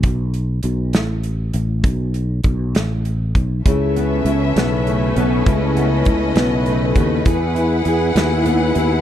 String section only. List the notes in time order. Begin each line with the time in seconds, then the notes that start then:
3.64 C#4 A4 B4 E5
5.46 D#5
7.25 E4 G#4 F#5